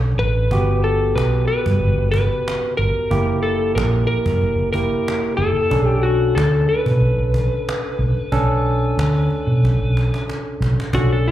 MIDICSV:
0, 0, Header, 1, 6, 480
1, 0, Start_track
1, 0, Key_signature, 2, "minor"
1, 0, Tempo, 651466
1, 374, Time_signature, 4, 2, 24, 8
1, 8336, End_track
2, 0, Start_track
2, 0, Title_t, "Electric slide guitar"
2, 0, Program_c, 0, 29
2, 140, Note_on_c, 0, 71, 104
2, 587, Note_off_c, 0, 71, 0
2, 618, Note_on_c, 0, 69, 86
2, 851, Note_on_c, 0, 71, 90
2, 862, Note_off_c, 0, 69, 0
2, 1079, Note_off_c, 0, 71, 0
2, 1087, Note_on_c, 0, 71, 94
2, 1540, Note_off_c, 0, 71, 0
2, 1558, Note_on_c, 0, 71, 109
2, 2015, Note_off_c, 0, 71, 0
2, 2043, Note_on_c, 0, 70, 101
2, 2497, Note_off_c, 0, 70, 0
2, 2524, Note_on_c, 0, 69, 86
2, 2750, Note_off_c, 0, 69, 0
2, 2764, Note_on_c, 0, 70, 81
2, 2990, Note_off_c, 0, 70, 0
2, 2999, Note_on_c, 0, 70, 91
2, 3473, Note_off_c, 0, 70, 0
2, 3482, Note_on_c, 0, 70, 95
2, 3936, Note_off_c, 0, 70, 0
2, 3956, Note_on_c, 0, 69, 101
2, 4339, Note_off_c, 0, 69, 0
2, 4339, Note_on_c, 0, 67, 101
2, 4443, Note_on_c, 0, 66, 78
2, 4457, Note_off_c, 0, 67, 0
2, 4669, Note_off_c, 0, 66, 0
2, 4679, Note_on_c, 0, 69, 75
2, 4924, Note_off_c, 0, 69, 0
2, 4927, Note_on_c, 0, 71, 87
2, 7540, Note_off_c, 0, 71, 0
2, 8065, Note_on_c, 0, 66, 92
2, 8180, Note_off_c, 0, 66, 0
2, 8198, Note_on_c, 0, 69, 69
2, 8298, Note_off_c, 0, 69, 0
2, 8308, Note_on_c, 0, 66, 77
2, 8336, Note_off_c, 0, 66, 0
2, 8336, End_track
3, 0, Start_track
3, 0, Title_t, "Tine electric piano"
3, 0, Program_c, 1, 4
3, 0, Note_on_c, 1, 61, 67
3, 0, Note_on_c, 1, 62, 58
3, 0, Note_on_c, 1, 69, 69
3, 342, Note_off_c, 1, 61, 0
3, 345, Note_off_c, 1, 62, 0
3, 347, Note_off_c, 1, 69, 0
3, 381, Note_on_c, 1, 59, 63
3, 382, Note_on_c, 1, 66, 60
3, 389, Note_on_c, 1, 67, 72
3, 2266, Note_off_c, 1, 59, 0
3, 2266, Note_off_c, 1, 66, 0
3, 2270, Note_off_c, 1, 67, 0
3, 2288, Note_on_c, 1, 58, 69
3, 2289, Note_on_c, 1, 64, 56
3, 2293, Note_on_c, 1, 67, 73
3, 3465, Note_off_c, 1, 58, 0
3, 3465, Note_off_c, 1, 64, 0
3, 3467, Note_off_c, 1, 67, 0
3, 3493, Note_on_c, 1, 58, 48
3, 3493, Note_on_c, 1, 64, 46
3, 3499, Note_on_c, 1, 67, 50
3, 4202, Note_on_c, 1, 61, 64
3, 4209, Note_on_c, 1, 62, 62
3, 4211, Note_off_c, 1, 58, 0
3, 4211, Note_off_c, 1, 64, 0
3, 4211, Note_on_c, 1, 69, 76
3, 4214, Note_off_c, 1, 67, 0
3, 6096, Note_off_c, 1, 61, 0
3, 6100, Note_off_c, 1, 62, 0
3, 6101, Note_off_c, 1, 69, 0
3, 6129, Note_on_c, 1, 61, 81
3, 6133, Note_on_c, 1, 62, 69
3, 6135, Note_on_c, 1, 69, 83
3, 8021, Note_off_c, 1, 61, 0
3, 8023, Note_off_c, 1, 62, 0
3, 8024, Note_off_c, 1, 69, 0
3, 8055, Note_on_c, 1, 61, 60
3, 8058, Note_on_c, 1, 62, 59
3, 8059, Note_on_c, 1, 69, 68
3, 8336, Note_off_c, 1, 61, 0
3, 8336, Note_off_c, 1, 62, 0
3, 8336, Note_off_c, 1, 69, 0
3, 8336, End_track
4, 0, Start_track
4, 0, Title_t, "Fingered electric bass"
4, 0, Program_c, 2, 33
4, 0, Note_on_c, 2, 35, 72
4, 110, Note_off_c, 2, 35, 0
4, 130, Note_on_c, 2, 33, 79
4, 347, Note_off_c, 2, 33, 0
4, 376, Note_on_c, 2, 31, 78
4, 825, Note_off_c, 2, 31, 0
4, 853, Note_on_c, 2, 35, 96
4, 1075, Note_off_c, 2, 35, 0
4, 1223, Note_on_c, 2, 43, 80
4, 1326, Note_off_c, 2, 43, 0
4, 1333, Note_on_c, 2, 31, 91
4, 1449, Note_off_c, 2, 31, 0
4, 1458, Note_on_c, 2, 31, 84
4, 1680, Note_off_c, 2, 31, 0
4, 2054, Note_on_c, 2, 31, 89
4, 2169, Note_off_c, 2, 31, 0
4, 2292, Note_on_c, 2, 30, 92
4, 2742, Note_off_c, 2, 30, 0
4, 2770, Note_on_c, 2, 34, 93
4, 2992, Note_off_c, 2, 34, 0
4, 3138, Note_on_c, 2, 42, 81
4, 3243, Note_off_c, 2, 42, 0
4, 3248, Note_on_c, 2, 30, 96
4, 3366, Note_off_c, 2, 30, 0
4, 3375, Note_on_c, 2, 30, 69
4, 3597, Note_off_c, 2, 30, 0
4, 3966, Note_on_c, 2, 30, 89
4, 4085, Note_off_c, 2, 30, 0
4, 4208, Note_on_c, 2, 35, 84
4, 4659, Note_off_c, 2, 35, 0
4, 4688, Note_on_c, 2, 38, 98
4, 4911, Note_off_c, 2, 38, 0
4, 5055, Note_on_c, 2, 47, 78
4, 5159, Note_off_c, 2, 47, 0
4, 5163, Note_on_c, 2, 35, 92
4, 5283, Note_off_c, 2, 35, 0
4, 5289, Note_on_c, 2, 35, 78
4, 5514, Note_off_c, 2, 35, 0
4, 5886, Note_on_c, 2, 35, 82
4, 6004, Note_off_c, 2, 35, 0
4, 6131, Note_on_c, 2, 35, 89
4, 6581, Note_off_c, 2, 35, 0
4, 6613, Note_on_c, 2, 38, 89
4, 6834, Note_off_c, 2, 38, 0
4, 6977, Note_on_c, 2, 47, 80
4, 7082, Note_off_c, 2, 47, 0
4, 7096, Note_on_c, 2, 35, 88
4, 7210, Note_off_c, 2, 35, 0
4, 7223, Note_on_c, 2, 35, 77
4, 7442, Note_off_c, 2, 35, 0
4, 7814, Note_on_c, 2, 35, 86
4, 7929, Note_off_c, 2, 35, 0
4, 8055, Note_on_c, 2, 35, 91
4, 8336, Note_off_c, 2, 35, 0
4, 8336, End_track
5, 0, Start_track
5, 0, Title_t, "Cajon"
5, 23, Note_on_c, 9, 38, 20
5, 97, Note_off_c, 9, 38, 0
5, 135, Note_on_c, 9, 38, 31
5, 208, Note_off_c, 9, 38, 0
5, 376, Note_on_c, 9, 36, 93
5, 450, Note_off_c, 9, 36, 0
5, 504, Note_on_c, 9, 38, 20
5, 578, Note_off_c, 9, 38, 0
5, 616, Note_on_c, 9, 38, 31
5, 690, Note_off_c, 9, 38, 0
5, 745, Note_on_c, 9, 38, 19
5, 818, Note_off_c, 9, 38, 0
5, 867, Note_on_c, 9, 38, 111
5, 941, Note_off_c, 9, 38, 0
5, 1222, Note_on_c, 9, 36, 76
5, 1296, Note_off_c, 9, 36, 0
5, 1340, Note_on_c, 9, 38, 41
5, 1413, Note_off_c, 9, 38, 0
5, 1464, Note_on_c, 9, 38, 19
5, 1537, Note_off_c, 9, 38, 0
5, 1574, Note_on_c, 9, 36, 82
5, 1648, Note_off_c, 9, 36, 0
5, 1713, Note_on_c, 9, 38, 32
5, 1787, Note_off_c, 9, 38, 0
5, 1825, Note_on_c, 9, 38, 120
5, 1899, Note_off_c, 9, 38, 0
5, 1942, Note_on_c, 9, 38, 20
5, 1953, Note_off_c, 9, 38, 0
5, 1953, Note_on_c, 9, 38, 35
5, 2027, Note_off_c, 9, 38, 0
5, 2185, Note_on_c, 9, 38, 18
5, 2258, Note_off_c, 9, 38, 0
5, 2293, Note_on_c, 9, 36, 94
5, 2367, Note_off_c, 9, 36, 0
5, 2535, Note_on_c, 9, 38, 36
5, 2609, Note_off_c, 9, 38, 0
5, 2783, Note_on_c, 9, 38, 104
5, 2856, Note_off_c, 9, 38, 0
5, 3137, Note_on_c, 9, 36, 75
5, 3211, Note_off_c, 9, 36, 0
5, 3253, Note_on_c, 9, 38, 46
5, 3327, Note_off_c, 9, 38, 0
5, 3376, Note_on_c, 9, 38, 23
5, 3450, Note_off_c, 9, 38, 0
5, 3491, Note_on_c, 9, 36, 73
5, 3564, Note_off_c, 9, 36, 0
5, 3620, Note_on_c, 9, 38, 22
5, 3631, Note_off_c, 9, 38, 0
5, 3631, Note_on_c, 9, 38, 30
5, 3705, Note_off_c, 9, 38, 0
5, 3744, Note_on_c, 9, 38, 100
5, 3818, Note_off_c, 9, 38, 0
5, 3856, Note_on_c, 9, 38, 20
5, 3930, Note_off_c, 9, 38, 0
5, 4209, Note_on_c, 9, 36, 99
5, 4283, Note_off_c, 9, 36, 0
5, 4336, Note_on_c, 9, 38, 19
5, 4410, Note_off_c, 9, 38, 0
5, 4449, Note_on_c, 9, 38, 32
5, 4523, Note_off_c, 9, 38, 0
5, 4577, Note_on_c, 9, 38, 18
5, 4650, Note_off_c, 9, 38, 0
5, 4698, Note_on_c, 9, 38, 106
5, 4772, Note_off_c, 9, 38, 0
5, 5056, Note_on_c, 9, 36, 64
5, 5129, Note_off_c, 9, 36, 0
5, 5169, Note_on_c, 9, 38, 40
5, 5242, Note_off_c, 9, 38, 0
5, 5294, Note_on_c, 9, 38, 19
5, 5367, Note_off_c, 9, 38, 0
5, 5409, Note_on_c, 9, 36, 78
5, 5421, Note_on_c, 9, 38, 31
5, 5483, Note_off_c, 9, 36, 0
5, 5495, Note_off_c, 9, 38, 0
5, 5663, Note_on_c, 9, 38, 113
5, 5737, Note_off_c, 9, 38, 0
5, 5779, Note_on_c, 9, 38, 19
5, 5852, Note_off_c, 9, 38, 0
5, 6022, Note_on_c, 9, 38, 19
5, 6095, Note_off_c, 9, 38, 0
5, 6132, Note_on_c, 9, 36, 91
5, 6206, Note_off_c, 9, 36, 0
5, 6373, Note_on_c, 9, 38, 34
5, 6447, Note_off_c, 9, 38, 0
5, 6624, Note_on_c, 9, 38, 113
5, 6698, Note_off_c, 9, 38, 0
5, 6855, Note_on_c, 9, 38, 37
5, 6929, Note_off_c, 9, 38, 0
5, 6985, Note_on_c, 9, 38, 21
5, 7058, Note_off_c, 9, 38, 0
5, 7098, Note_on_c, 9, 38, 51
5, 7109, Note_off_c, 9, 38, 0
5, 7109, Note_on_c, 9, 38, 60
5, 7183, Note_off_c, 9, 38, 0
5, 7221, Note_on_c, 9, 38, 23
5, 7295, Note_off_c, 9, 38, 0
5, 7346, Note_on_c, 9, 38, 64
5, 7420, Note_off_c, 9, 38, 0
5, 7471, Note_on_c, 9, 38, 65
5, 7545, Note_off_c, 9, 38, 0
5, 7575, Note_on_c, 9, 38, 48
5, 7586, Note_off_c, 9, 38, 0
5, 7586, Note_on_c, 9, 38, 74
5, 7659, Note_off_c, 9, 38, 0
5, 7703, Note_on_c, 9, 38, 21
5, 7777, Note_off_c, 9, 38, 0
5, 7827, Note_on_c, 9, 38, 80
5, 7900, Note_off_c, 9, 38, 0
5, 7956, Note_on_c, 9, 38, 74
5, 8030, Note_off_c, 9, 38, 0
5, 8055, Note_on_c, 9, 36, 90
5, 8129, Note_off_c, 9, 36, 0
5, 8182, Note_on_c, 9, 38, 19
5, 8256, Note_off_c, 9, 38, 0
5, 8294, Note_on_c, 9, 38, 32
5, 8336, Note_off_c, 9, 38, 0
5, 8336, End_track
6, 0, Start_track
6, 0, Title_t, "Muted fingered electric bass strokes"
6, 4095, Note_on_c, 9, 29, 33
6, 4169, Note_off_c, 9, 29, 0
6, 7938, Note_on_c, 9, 29, 31
6, 8011, Note_off_c, 9, 29, 0
6, 8336, End_track
0, 0, End_of_file